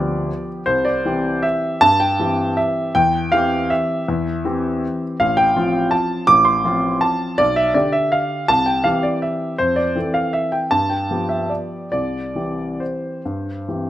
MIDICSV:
0, 0, Header, 1, 2, 480
1, 0, Start_track
1, 0, Key_signature, 0, "major"
1, 0, Tempo, 385852
1, 832, Time_signature, 3, 2, 24, 8
1, 2262, Tempo, 376412
1, 6102, Tempo, 366077
1, 12822, Tempo, 380952
1, 14262, Tempo, 412088
1, 15222, Tempo, 437956
1, 17388, End_track
2, 0, Start_track
2, 0, Title_t, "Grand piano"
2, 0, Program_c, 0, 0
2, 0, Control_c, 0, 64, 127
2, 0, Note_on_c, 0, 38, 61
2, 0, Note_on_c, 0, 53, 44
2, 0, Note_on_c, 0, 59, 45
2, 0, Note_on_c, 0, 67, 51
2, 0, Note_on_c, 0, 74, 71
2, 369, Control_c, 0, 64, 0
2, 374, Note_off_c, 0, 38, 0
2, 589, Note_off_c, 0, 74, 0
2, 782, Note_off_c, 0, 53, 0
2, 783, Note_off_c, 0, 59, 0
2, 787, Note_off_c, 0, 67, 0
2, 819, Note_on_c, 0, 72, 82
2, 829, Note_on_c, 0, 36, 56
2, 1053, Note_on_c, 0, 74, 76
2, 1059, Control_c, 0, 64, 127
2, 1062, Note_off_c, 0, 72, 0
2, 1292, Note_off_c, 0, 36, 0
2, 1311, Note_on_c, 0, 52, 44
2, 1319, Note_on_c, 0, 60, 42
2, 1321, Note_on_c, 0, 67, 47
2, 1773, Note_on_c, 0, 76, 77
2, 1781, Note_off_c, 0, 74, 0
2, 1807, Control_c, 0, 64, 0
2, 2215, Note_off_c, 0, 52, 0
2, 2219, Note_off_c, 0, 60, 0
2, 2220, Note_off_c, 0, 67, 0
2, 2251, Note_on_c, 0, 81, 112
2, 2255, Note_off_c, 0, 76, 0
2, 2262, Note_on_c, 0, 43, 62
2, 2491, Control_c, 0, 64, 127
2, 2492, Note_off_c, 0, 81, 0
2, 2493, Note_on_c, 0, 79, 78
2, 2724, Note_off_c, 0, 43, 0
2, 2742, Note_on_c, 0, 52, 47
2, 2745, Note_on_c, 0, 60, 46
2, 2752, Note_on_c, 0, 67, 52
2, 3219, Note_on_c, 0, 76, 75
2, 3222, Note_off_c, 0, 79, 0
2, 3235, Control_c, 0, 64, 0
2, 3655, Note_off_c, 0, 52, 0
2, 3656, Note_off_c, 0, 60, 0
2, 3659, Note_off_c, 0, 67, 0
2, 3701, Note_off_c, 0, 76, 0
2, 3702, Note_on_c, 0, 79, 97
2, 3709, Note_on_c, 0, 40, 67
2, 3907, Control_c, 0, 64, 127
2, 4165, Note_off_c, 0, 40, 0
2, 4173, Note_on_c, 0, 77, 89
2, 4175, Note_off_c, 0, 79, 0
2, 4189, Note_on_c, 0, 52, 45
2, 4196, Note_on_c, 0, 60, 42
2, 4196, Note_on_c, 0, 67, 50
2, 4662, Note_off_c, 0, 77, 0
2, 4663, Note_on_c, 0, 76, 72
2, 4683, Control_c, 0, 64, 0
2, 5096, Note_off_c, 0, 52, 0
2, 5100, Note_off_c, 0, 60, 0
2, 5100, Note_off_c, 0, 67, 0
2, 5152, Note_on_c, 0, 40, 65
2, 5361, Control_c, 0, 64, 127
2, 5606, Note_off_c, 0, 40, 0
2, 5616, Note_on_c, 0, 52, 49
2, 5621, Note_on_c, 0, 60, 50
2, 5627, Note_on_c, 0, 67, 51
2, 6115, Control_c, 0, 64, 0
2, 6350, Note_off_c, 0, 76, 0
2, 6533, Note_off_c, 0, 52, 0
2, 6536, Note_off_c, 0, 60, 0
2, 6539, Note_off_c, 0, 67, 0
2, 6584, Note_on_c, 0, 77, 88
2, 6595, Note_on_c, 0, 33, 55
2, 6810, Note_on_c, 0, 79, 92
2, 6814, Note_off_c, 0, 77, 0
2, 6843, Control_c, 0, 64, 127
2, 7041, Note_off_c, 0, 33, 0
2, 7058, Note_on_c, 0, 53, 46
2, 7066, Note_on_c, 0, 60, 44
2, 7069, Note_on_c, 0, 65, 49
2, 7516, Note_on_c, 0, 81, 77
2, 7530, Note_off_c, 0, 79, 0
2, 7544, Control_c, 0, 64, 0
2, 7952, Note_off_c, 0, 53, 0
2, 7955, Note_off_c, 0, 60, 0
2, 7957, Note_off_c, 0, 65, 0
2, 7992, Note_off_c, 0, 81, 0
2, 7993, Note_on_c, 0, 86, 117
2, 8006, Note_on_c, 0, 33, 60
2, 8223, Note_on_c, 0, 84, 77
2, 8232, Note_off_c, 0, 86, 0
2, 8240, Control_c, 0, 64, 127
2, 8468, Note_off_c, 0, 33, 0
2, 8484, Note_on_c, 0, 53, 48
2, 8490, Note_on_c, 0, 60, 46
2, 8495, Note_on_c, 0, 65, 51
2, 8959, Note_on_c, 0, 81, 81
2, 8966, Note_off_c, 0, 84, 0
2, 8982, Control_c, 0, 64, 0
2, 9402, Note_off_c, 0, 53, 0
2, 9405, Note_off_c, 0, 60, 0
2, 9408, Note_off_c, 0, 65, 0
2, 9445, Note_on_c, 0, 74, 98
2, 9446, Note_off_c, 0, 81, 0
2, 9462, Note_on_c, 0, 35, 58
2, 9681, Control_c, 0, 64, 127
2, 9683, Note_off_c, 0, 74, 0
2, 9685, Note_on_c, 0, 76, 79
2, 9917, Note_off_c, 0, 35, 0
2, 9923, Note_on_c, 0, 74, 76
2, 9925, Note_off_c, 0, 76, 0
2, 9931, Note_on_c, 0, 50, 47
2, 9939, Note_on_c, 0, 62, 46
2, 9943, Control_c, 0, 64, 0
2, 9945, Note_on_c, 0, 67, 49
2, 10160, Note_on_c, 0, 76, 78
2, 10169, Note_off_c, 0, 74, 0
2, 10413, Note_off_c, 0, 76, 0
2, 10414, Note_on_c, 0, 77, 79
2, 10847, Note_off_c, 0, 50, 0
2, 10851, Note_off_c, 0, 62, 0
2, 10854, Note_off_c, 0, 67, 0
2, 10894, Note_on_c, 0, 81, 99
2, 10895, Note_off_c, 0, 77, 0
2, 10906, Note_on_c, 0, 36, 56
2, 11124, Note_on_c, 0, 79, 67
2, 11129, Control_c, 0, 64, 127
2, 11131, Note_off_c, 0, 81, 0
2, 11358, Note_on_c, 0, 77, 82
2, 11365, Note_off_c, 0, 36, 0
2, 11370, Note_off_c, 0, 79, 0
2, 11375, Note_on_c, 0, 52, 45
2, 11383, Note_on_c, 0, 60, 40
2, 11385, Note_on_c, 0, 67, 46
2, 11391, Control_c, 0, 64, 0
2, 11611, Note_on_c, 0, 74, 69
2, 11615, Note_off_c, 0, 77, 0
2, 11860, Note_on_c, 0, 76, 62
2, 11867, Note_off_c, 0, 74, 0
2, 12293, Note_off_c, 0, 52, 0
2, 12298, Note_off_c, 0, 60, 0
2, 12299, Note_off_c, 0, 67, 0
2, 12336, Note_on_c, 0, 72, 82
2, 12339, Note_off_c, 0, 76, 0
2, 12349, Note_on_c, 0, 41, 49
2, 12566, Note_on_c, 0, 74, 71
2, 12569, Control_c, 0, 64, 127
2, 12575, Note_off_c, 0, 72, 0
2, 12809, Note_off_c, 0, 41, 0
2, 12824, Note_on_c, 0, 52, 39
2, 12830, Note_on_c, 0, 60, 37
2, 12834, Note_on_c, 0, 69, 44
2, 12840, Control_c, 0, 64, 0
2, 13054, Note_off_c, 0, 74, 0
2, 13054, Note_on_c, 0, 77, 71
2, 13296, Note_on_c, 0, 76, 66
2, 13302, Note_off_c, 0, 77, 0
2, 13534, Note_on_c, 0, 79, 60
2, 13542, Note_off_c, 0, 76, 0
2, 13733, Note_off_c, 0, 52, 0
2, 13737, Note_off_c, 0, 60, 0
2, 13738, Note_off_c, 0, 69, 0
2, 13771, Note_on_c, 0, 81, 86
2, 13777, Note_off_c, 0, 79, 0
2, 13783, Note_on_c, 0, 43, 52
2, 14004, Control_c, 0, 64, 127
2, 14010, Note_on_c, 0, 79, 59
2, 14015, Note_off_c, 0, 81, 0
2, 14248, Note_off_c, 0, 43, 0
2, 14273, Note_on_c, 0, 53, 36
2, 14275, Note_on_c, 0, 59, 38
2, 14283, Note_on_c, 0, 67, 41
2, 14483, Note_off_c, 0, 79, 0
2, 14485, Note_on_c, 0, 76, 57
2, 14724, Note_on_c, 0, 74, 47
2, 14725, Note_off_c, 0, 76, 0
2, 14745, Control_c, 0, 64, 0
2, 15181, Note_off_c, 0, 53, 0
2, 15182, Note_off_c, 0, 59, 0
2, 15186, Note_off_c, 0, 67, 0
2, 15199, Note_off_c, 0, 74, 0
2, 15217, Note_on_c, 0, 74, 71
2, 15227, Note_on_c, 0, 36, 41
2, 15477, Control_c, 0, 64, 127
2, 15687, Note_off_c, 0, 36, 0
2, 15696, Note_on_c, 0, 52, 33
2, 15702, Note_on_c, 0, 60, 32
2, 15706, Note_on_c, 0, 67, 31
2, 16186, Note_on_c, 0, 72, 45
2, 16191, Note_off_c, 0, 74, 0
2, 16210, Control_c, 0, 64, 0
2, 16633, Note_off_c, 0, 52, 0
2, 16636, Note_off_c, 0, 60, 0
2, 16638, Note_off_c, 0, 67, 0
2, 16681, Note_on_c, 0, 43, 44
2, 16927, Control_c, 0, 64, 127
2, 17134, Note_off_c, 0, 43, 0
2, 17155, Note_on_c, 0, 52, 33
2, 17157, Note_on_c, 0, 60, 32
2, 17161, Note_on_c, 0, 67, 34
2, 17388, Note_off_c, 0, 52, 0
2, 17388, Note_off_c, 0, 60, 0
2, 17388, Note_off_c, 0, 67, 0
2, 17388, Note_off_c, 0, 72, 0
2, 17388, End_track
0, 0, End_of_file